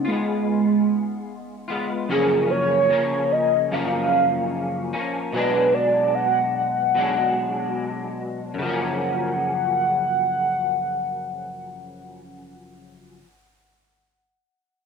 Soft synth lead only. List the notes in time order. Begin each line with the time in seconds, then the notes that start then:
0.07 G#3
2.11 G#4
2.50 C#5
3.32 D#5
3.73 F5
5.35 B4
5.74 D5
6.15 F#5
6.55 F#5
8.59 F#5